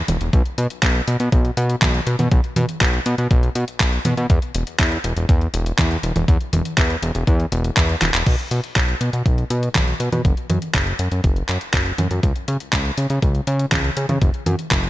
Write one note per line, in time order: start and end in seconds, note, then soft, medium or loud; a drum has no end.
0.08 0.18 E1 loud
0.08 closed hi-hat medium
0.08 high conga medium
0.21 0.30 E1 loud
0.21 closed hi-hat soft
0.33 0.42 B1 loud
0.33 kick loud
0.33 closed hi-hat soft
0.46 closed hi-hat soft
0.58 0.67 B2 loud
0.58 closed hi-hat medium
0.70 closed hi-hat medium
0.83 1.01 B1 medium
0.83 kick loud
0.83 clap loud
0.83 closed hi-hat medium
0.95 closed hi-hat soft
1.08 1.17 B2 medium
1.08 closed hi-hat medium
1.20 1.29 B2 medium
1.20 closed hi-hat soft
1.32 1.51 B1 medium
1.32 kick loud
1.32 closed hi-hat medium
1.45 closed hi-hat soft
1.57 1.76 B2 loud
1.57 closed hi-hat medium
1.70 closed hi-hat soft
1.82 2.01 B1 medium
1.82 kick loud
1.82 clap loud
1.82 closed hi-hat medium
1.82 high conga medium
1.94 closed hi-hat soft
2.07 2.16 B2 medium
2.07 closed hi-hat medium
2.19 2.28 B2 loud
2.19 closed hi-hat medium
2.19 high conga medium
2.31 2.41 B1 loud
2.31 kick loud
2.31 closed hi-hat medium
2.44 closed hi-hat soft
2.56 2.66 B2 loud
2.56 closed hi-hat medium
2.56 high conga medium
2.69 closed hi-hat medium
2.81 3.00 B1 medium
2.81 kick loud
2.81 clap loud
2.81 closed hi-hat soft
2.94 closed hi-hat soft
3.06 3.15 B2 medium
3.06 closed hi-hat medium
3.18 3.28 B2 medium
3.18 closed hi-hat medium
3.31 3.49 B1 loud
3.31 kick loud
3.31 closed hi-hat medium
3.43 closed hi-hat soft
3.55 3.65 B2 medium
3.55 closed hi-hat medium
3.68 closed hi-hat medium
3.80 3.99 B1 medium
3.80 kick loud
3.80 clap loud
3.80 closed hi-hat soft
3.93 closed hi-hat soft
4.05 4.14 B2 loud
4.05 closed hi-hat medium
4.05 high conga medium
4.17 4.27 B2 loud
4.17 closed hi-hat medium
4.30 4.39 E2 loud
4.30 kick loud
4.30 closed hi-hat medium
4.42 closed hi-hat soft
4.55 4.64 E1 loud
4.55 closed hi-hat medium
4.67 closed hi-hat medium
4.79 4.98 E2 medium
4.79 kick medium
4.79 clap loud
4.79 closed hi-hat soft
4.92 closed hi-hat soft
5.04 5.13 E1 medium
5.04 closed hi-hat medium
5.17 5.26 E1 medium
5.17 closed hi-hat medium
5.29 5.48 E2 medium
5.29 kick loud
5.29 closed hi-hat medium
5.41 closed hi-hat soft
5.54 5.72 E1 loud
5.54 closed hi-hat medium
5.66 closed hi-hat medium
5.79 5.97 E2 loud
5.79 kick loud
5.79 clap loud
5.79 closed hi-hat medium
5.79 high conga medium
5.91 closed hi-hat soft
6.03 6.13 E1 medium
6.03 closed hi-hat medium
6.16 6.25 E1 loud
6.16 closed hi-hat medium
6.16 high conga medium
6.28 6.37 E2 loud
6.28 kick loud
6.28 closed hi-hat medium
6.41 closed hi-hat soft
6.53 6.62 E1 loud
6.53 closed hi-hat medium
6.53 high conga medium
6.65 closed hi-hat medium
6.78 6.96 E2 medium
6.78 kick loud
6.78 clap loud
6.78 closed hi-hat medium
6.90 closed hi-hat soft
7.02 7.12 E1 loud
7.02 closed hi-hat medium
7.15 7.24 E1 medium
7.15 closed hi-hat medium
7.27 7.46 E2 loud
7.27 kick loud
7.27 closed hi-hat medium
7.40 closed hi-hat soft
7.52 7.71 E1 loud
7.52 closed hi-hat medium
7.64 closed hi-hat medium
7.77 7.96 E2 medium
7.77 kick loud
7.77 clap loud
7.77 closed hi-hat medium
7.89 closed hi-hat soft
8.02 8.11 E1 loud
8.02 clap medium
8.02 closed hi-hat medium
8.02 high conga medium
8.14 8.23 E1 loud
8.14 clap loud
8.14 closed hi-hat medium
8.26 8.36 B1 loud
8.26 kick loud
8.26 closed hi-hat medium
8.26 crash medium
8.39 closed hi-hat soft
8.51 8.61 B2 loud
8.51 closed hi-hat medium
8.64 closed hi-hat medium
8.76 8.95 B1 medium
8.76 kick loud
8.76 clap loud
8.76 closed hi-hat medium
8.88 closed hi-hat soft
9.01 9.10 B2 loud
9.01 closed hi-hat medium
9.13 9.23 B2 medium
9.13 closed hi-hat medium
9.26 9.44 B1 medium
9.26 kick loud
9.26 closed hi-hat medium
9.38 closed hi-hat soft
9.50 9.69 B2 loud
9.50 closed hi-hat medium
9.63 closed hi-hat soft
9.75 9.94 B1 medium
9.75 kick loud
9.75 clap loud
9.75 closed hi-hat medium
9.75 high conga medium
9.88 closed hi-hat soft
10.00 10.09 B2 medium
10.00 closed hi-hat medium
10.12 10.22 B2 loud
10.12 closed hi-hat medium
10.12 high conga medium
10.25 10.34 F#1 loud
10.25 kick loud
10.25 closed hi-hat medium
10.37 closed hi-hat soft
10.50 10.59 F#2 loud
10.50 closed hi-hat medium
10.50 high conga medium
10.62 closed hi-hat medium
10.74 10.93 F#1 medium
10.74 kick loud
10.74 clap loud
10.74 closed hi-hat medium
10.87 closed hi-hat soft
10.99 11.09 F#2 loud
10.99 closed hi-hat medium
11.12 11.21 F#2 medium
11.12 closed hi-hat medium
11.24 11.43 F#1 loud
11.24 kick loud
11.24 closed hi-hat medium
11.36 closed hi-hat soft
11.49 11.58 F#2 medium
11.49 clap medium
11.49 closed hi-hat medium
11.61 closed hi-hat medium
11.74 11.92 F#1 medium
11.74 kick loud
11.74 clap loud
11.74 closed hi-hat medium
11.86 closed hi-hat soft
11.98 12.08 F#2 loud
11.98 closed hi-hat medium
11.98 high conga medium
12.11 12.20 F#2 loud
12.11 closed hi-hat medium
12.23 12.33 C#2 loud
12.23 kick loud
12.23 closed hi-hat medium
12.36 closed hi-hat soft
12.48 12.57 C#3 loud
12.48 closed hi-hat medium
12.60 closed hi-hat medium
12.73 12.91 C#2 medium
12.73 kick loud
12.73 clap loud
12.73 closed hi-hat medium
12.85 closed hi-hat soft
12.98 13.07 C#3 medium
12.98 closed hi-hat medium
13.10 13.19 C#3 medium
13.10 closed hi-hat medium
13.22 13.41 C#2 medium
13.22 kick loud
13.22 closed hi-hat medium
13.35 closed hi-hat soft
13.47 13.66 C#3 loud
13.47 closed hi-hat medium
13.59 closed hi-hat medium
13.72 13.91 C#2 medium
13.72 kick loud
13.72 clap loud
13.72 closed hi-hat soft
13.72 high conga medium
13.84 closed hi-hat soft
13.97 14.06 C#3 medium
13.97 closed hi-hat medium
14.09 14.19 C#3 loud
14.09 closed hi-hat medium
14.09 high conga medium
14.21 14.31 F#1 loud
14.21 kick loud
14.21 closed hi-hat medium
14.34 closed hi-hat soft
14.46 14.56 F#2 loud
14.46 closed hi-hat medium
14.46 high conga medium
14.59 closed hi-hat soft
14.71 14.90 F#1 medium
14.71 kick loud
14.71 clap loud
14.71 closed hi-hat medium
14.84 closed hi-hat soft